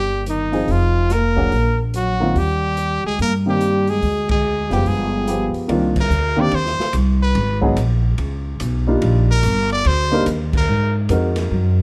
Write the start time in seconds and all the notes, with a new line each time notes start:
Already playing: G1 G3 G4
0.26 D#3 D#4, closed hi-hat
0.52 F3 C4 D#4 G#4, open hi-hat
0.68 F1 F3 F4, kick, open hi-hat
1.10 A#3 A#4, snare, closed hi-hat
1.36 F#3 A#3 D4 G#4, kick
1.52 A#1, kick, open hi-hat
1.94 F#3 F#4, closed hi-hat
2.20 D#3 A#3 C4 F4
2.35 D#2 G3 G4, kick, open hi-hat
2.77 closed hi-hat
3.04 D2 G#3 G#4
3.19 G2 A#3 A#4, kick, open hi-hat
3.46 D#3 G3 A#3 C4 G4
3.61 closed hi-hat
3.87 G#3 G#4, open hi-hat
4.02 D2, kick, open hi-hat
4.29 G#3 G#4, kick, ride
4.70 F#1 F3 G3 G#3 B3 G4 G5, snare, open hi-hat
4.86 G1 G#3 G#4, kick, open hi-hat
5.27 F3 G#3 B3 G4, closed hi-hat
5.54 muted upright bass stroke, open hi-hat
5.68 C2 D#3 A#3 C4 D4 F4, kick, ride
5.96 kick, crash
6.00 A#4
6.09 D2, hi-hat pedal
6.36 D#3 A#3 C4 D4 G4
6.40 D5
6.51 D#2 C5, kick, ride
6.66 snare
6.78 muted upright bass stroke, snare
6.93 C2, kick, hi-hat pedal, ride
7.22 B4
7.35 G#1, kick, ride
7.61 F#3 G#3 B3 D#4 G#4, kick
7.76 A#1, kick, hi-hat pedal, ride
8.18 C#2, kick, ride
8.60 B1, kick, hi-hat pedal, ride
8.87 G3 A#3 D4 D#4 F4
9.02 A#1, kick, ride
9.31 A#4
9.43 G1, kick, hi-hat pedal, ride
9.70 D5, ride
9.85 D2 C5, kick, ride
10.11 G3 A#3 D4 D#4 A#4
10.26 D#2, kick, hi-hat pedal, ride
10.53 A#4, kick, crash
10.68 G#2
11.09 F2 G#3 C4 D#4 F#4 A#4, kick, hi-hat pedal, ride
11.36 snare, ride
11.51 F#2, kick